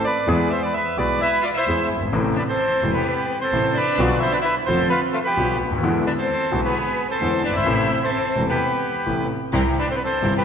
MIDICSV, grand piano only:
0, 0, Header, 1, 2, 480
1, 0, Start_track
1, 0, Key_signature, 0, "minor"
1, 0, Tempo, 462606
1, 285, Time_signature, 4, 2, 24, 8
1, 10838, End_track
2, 0, Start_track
2, 0, Title_t, "Grand piano"
2, 0, Program_c, 0, 0
2, 286, Note_on_c, 0, 52, 74
2, 288, Note_on_c, 0, 40, 72
2, 289, Note_on_c, 0, 56, 56
2, 293, Note_on_c, 0, 59, 61
2, 296, Note_on_c, 0, 68, 72
2, 489, Note_off_c, 0, 40, 0
2, 489, Note_off_c, 0, 56, 0
2, 491, Note_off_c, 0, 59, 0
2, 492, Note_off_c, 0, 52, 0
2, 492, Note_off_c, 0, 68, 0
2, 1006, Note_on_c, 0, 52, 42
2, 1010, Note_on_c, 0, 47, 50
2, 1010, Note_on_c, 0, 56, 38
2, 1010, Note_on_c, 0, 59, 40
2, 1012, Note_on_c, 0, 35, 48
2, 1013, Note_on_c, 0, 68, 46
2, 1208, Note_off_c, 0, 52, 0
2, 1210, Note_off_c, 0, 47, 0
2, 1210, Note_off_c, 0, 56, 0
2, 1210, Note_off_c, 0, 59, 0
2, 1211, Note_off_c, 0, 35, 0
2, 1212, Note_off_c, 0, 68, 0
2, 1744, Note_on_c, 0, 52, 46
2, 1745, Note_on_c, 0, 56, 36
2, 1749, Note_on_c, 0, 40, 46
2, 1749, Note_on_c, 0, 59, 34
2, 1752, Note_on_c, 0, 68, 43
2, 1940, Note_off_c, 0, 52, 0
2, 1940, Note_off_c, 0, 56, 0
2, 1942, Note_off_c, 0, 40, 0
2, 1942, Note_off_c, 0, 59, 0
2, 1944, Note_off_c, 0, 68, 0
2, 2035, Note_on_c, 0, 30, 41
2, 2094, Note_off_c, 0, 30, 0
2, 2102, Note_on_c, 0, 31, 48
2, 2154, Note_on_c, 0, 32, 56
2, 2157, Note_off_c, 0, 31, 0
2, 2207, Note_on_c, 0, 48, 59
2, 2208, Note_on_c, 0, 33, 72
2, 2209, Note_on_c, 0, 45, 64
2, 2209, Note_on_c, 0, 52, 55
2, 2212, Note_on_c, 0, 57, 50
2, 2213, Note_off_c, 0, 32, 0
2, 2213, Note_on_c, 0, 64, 68
2, 2413, Note_off_c, 0, 33, 0
2, 2413, Note_off_c, 0, 48, 0
2, 2414, Note_off_c, 0, 45, 0
2, 2414, Note_off_c, 0, 52, 0
2, 2415, Note_off_c, 0, 57, 0
2, 2416, Note_off_c, 0, 64, 0
2, 2935, Note_on_c, 0, 28, 54
2, 2937, Note_on_c, 0, 48, 40
2, 2937, Note_on_c, 0, 52, 36
2, 2938, Note_on_c, 0, 57, 43
2, 2939, Note_on_c, 0, 40, 47
2, 2941, Note_on_c, 0, 64, 49
2, 3136, Note_off_c, 0, 28, 0
2, 3137, Note_off_c, 0, 48, 0
2, 3137, Note_off_c, 0, 52, 0
2, 3138, Note_off_c, 0, 40, 0
2, 3138, Note_off_c, 0, 57, 0
2, 3139, Note_off_c, 0, 64, 0
2, 3663, Note_on_c, 0, 48, 40
2, 3666, Note_on_c, 0, 33, 46
2, 3666, Note_on_c, 0, 45, 50
2, 3666, Note_on_c, 0, 52, 39
2, 3666, Note_on_c, 0, 57, 38
2, 3668, Note_on_c, 0, 64, 46
2, 3860, Note_off_c, 0, 48, 0
2, 3861, Note_off_c, 0, 45, 0
2, 3861, Note_off_c, 0, 52, 0
2, 3862, Note_off_c, 0, 33, 0
2, 3862, Note_off_c, 0, 57, 0
2, 3863, Note_off_c, 0, 64, 0
2, 4141, Note_on_c, 0, 50, 55
2, 4144, Note_on_c, 0, 53, 58
2, 4145, Note_on_c, 0, 47, 77
2, 4148, Note_on_c, 0, 35, 75
2, 4149, Note_on_c, 0, 59, 58
2, 4149, Note_on_c, 0, 65, 71
2, 4338, Note_off_c, 0, 50, 0
2, 4339, Note_off_c, 0, 47, 0
2, 4339, Note_off_c, 0, 53, 0
2, 4341, Note_off_c, 0, 35, 0
2, 4342, Note_off_c, 0, 59, 0
2, 4342, Note_off_c, 0, 65, 0
2, 4855, Note_on_c, 0, 29, 52
2, 4855, Note_on_c, 0, 53, 41
2, 4856, Note_on_c, 0, 41, 55
2, 4856, Note_on_c, 0, 50, 45
2, 4856, Note_on_c, 0, 59, 42
2, 4860, Note_on_c, 0, 65, 48
2, 5053, Note_off_c, 0, 29, 0
2, 5053, Note_off_c, 0, 53, 0
2, 5054, Note_off_c, 0, 41, 0
2, 5054, Note_off_c, 0, 50, 0
2, 5054, Note_off_c, 0, 59, 0
2, 5056, Note_off_c, 0, 65, 0
2, 5573, Note_on_c, 0, 47, 54
2, 5573, Note_on_c, 0, 50, 37
2, 5573, Note_on_c, 0, 53, 38
2, 5575, Note_on_c, 0, 35, 53
2, 5575, Note_on_c, 0, 65, 43
2, 5577, Note_on_c, 0, 59, 39
2, 5771, Note_off_c, 0, 47, 0
2, 5771, Note_off_c, 0, 50, 0
2, 5771, Note_off_c, 0, 53, 0
2, 5772, Note_off_c, 0, 35, 0
2, 5772, Note_off_c, 0, 65, 0
2, 5773, Note_off_c, 0, 59, 0
2, 5873, Note_on_c, 0, 37, 41
2, 5930, Note_off_c, 0, 37, 0
2, 5934, Note_on_c, 0, 38, 54
2, 5990, Note_off_c, 0, 38, 0
2, 5994, Note_on_c, 0, 39, 64
2, 6050, Note_off_c, 0, 39, 0
2, 6052, Note_on_c, 0, 40, 73
2, 6053, Note_on_c, 0, 56, 59
2, 6054, Note_on_c, 0, 50, 69
2, 6054, Note_on_c, 0, 52, 72
2, 6056, Note_on_c, 0, 59, 61
2, 6059, Note_on_c, 0, 64, 74
2, 6251, Note_off_c, 0, 40, 0
2, 6251, Note_off_c, 0, 56, 0
2, 6252, Note_off_c, 0, 50, 0
2, 6252, Note_off_c, 0, 52, 0
2, 6253, Note_off_c, 0, 59, 0
2, 6254, Note_off_c, 0, 64, 0
2, 6763, Note_on_c, 0, 56, 40
2, 6764, Note_on_c, 0, 35, 51
2, 6765, Note_on_c, 0, 47, 56
2, 6765, Note_on_c, 0, 50, 46
2, 6767, Note_on_c, 0, 64, 49
2, 6768, Note_on_c, 0, 59, 43
2, 6964, Note_off_c, 0, 56, 0
2, 6965, Note_off_c, 0, 35, 0
2, 6965, Note_off_c, 0, 47, 0
2, 6966, Note_off_c, 0, 50, 0
2, 6966, Note_off_c, 0, 64, 0
2, 6967, Note_off_c, 0, 59, 0
2, 7488, Note_on_c, 0, 50, 45
2, 7488, Note_on_c, 0, 59, 36
2, 7489, Note_on_c, 0, 40, 48
2, 7489, Note_on_c, 0, 52, 49
2, 7489, Note_on_c, 0, 56, 37
2, 7493, Note_on_c, 0, 64, 45
2, 7686, Note_off_c, 0, 50, 0
2, 7686, Note_off_c, 0, 59, 0
2, 7687, Note_off_c, 0, 40, 0
2, 7687, Note_off_c, 0, 52, 0
2, 7687, Note_off_c, 0, 56, 0
2, 7689, Note_off_c, 0, 64, 0
2, 7789, Note_on_c, 0, 30, 40
2, 7839, Note_on_c, 0, 31, 47
2, 7845, Note_off_c, 0, 30, 0
2, 7890, Note_on_c, 0, 32, 52
2, 7900, Note_off_c, 0, 31, 0
2, 7951, Note_on_c, 0, 52, 53
2, 7952, Note_on_c, 0, 57, 52
2, 7953, Note_on_c, 0, 48, 58
2, 7954, Note_on_c, 0, 33, 67
2, 7955, Note_off_c, 0, 32, 0
2, 7955, Note_on_c, 0, 45, 72
2, 7955, Note_on_c, 0, 64, 69
2, 8156, Note_off_c, 0, 52, 0
2, 8157, Note_off_c, 0, 48, 0
2, 8157, Note_off_c, 0, 57, 0
2, 8158, Note_off_c, 0, 33, 0
2, 8158, Note_off_c, 0, 45, 0
2, 8158, Note_off_c, 0, 64, 0
2, 8670, Note_on_c, 0, 48, 45
2, 8675, Note_on_c, 0, 52, 39
2, 8675, Note_on_c, 0, 57, 40
2, 8676, Note_on_c, 0, 28, 50
2, 8676, Note_on_c, 0, 40, 49
2, 8679, Note_on_c, 0, 64, 47
2, 8876, Note_off_c, 0, 48, 0
2, 8879, Note_off_c, 0, 40, 0
2, 8879, Note_off_c, 0, 52, 0
2, 8879, Note_off_c, 0, 57, 0
2, 8880, Note_off_c, 0, 28, 0
2, 8881, Note_off_c, 0, 64, 0
2, 9402, Note_on_c, 0, 52, 33
2, 9403, Note_on_c, 0, 33, 49
2, 9406, Note_on_c, 0, 48, 39
2, 9408, Note_on_c, 0, 57, 38
2, 9408, Note_on_c, 0, 64, 43
2, 9410, Note_on_c, 0, 45, 45
2, 9606, Note_off_c, 0, 52, 0
2, 9607, Note_off_c, 0, 33, 0
2, 9608, Note_off_c, 0, 48, 0
2, 9609, Note_off_c, 0, 57, 0
2, 9609, Note_off_c, 0, 64, 0
2, 9610, Note_off_c, 0, 45, 0
2, 9887, Note_on_c, 0, 48, 77
2, 9889, Note_on_c, 0, 52, 54
2, 9891, Note_on_c, 0, 36, 70
2, 9891, Note_on_c, 0, 64, 65
2, 9892, Note_on_c, 0, 55, 51
2, 10090, Note_off_c, 0, 48, 0
2, 10090, Note_off_c, 0, 52, 0
2, 10091, Note_off_c, 0, 36, 0
2, 10091, Note_off_c, 0, 64, 0
2, 10092, Note_off_c, 0, 55, 0
2, 10607, Note_on_c, 0, 31, 51
2, 10607, Note_on_c, 0, 43, 48
2, 10608, Note_on_c, 0, 48, 43
2, 10609, Note_on_c, 0, 55, 38
2, 10611, Note_on_c, 0, 52, 40
2, 10613, Note_on_c, 0, 64, 50
2, 10809, Note_off_c, 0, 31, 0
2, 10809, Note_off_c, 0, 43, 0
2, 10810, Note_off_c, 0, 48, 0
2, 10811, Note_off_c, 0, 52, 0
2, 10811, Note_off_c, 0, 55, 0
2, 10812, Note_off_c, 0, 64, 0
2, 10838, End_track
0, 0, End_of_file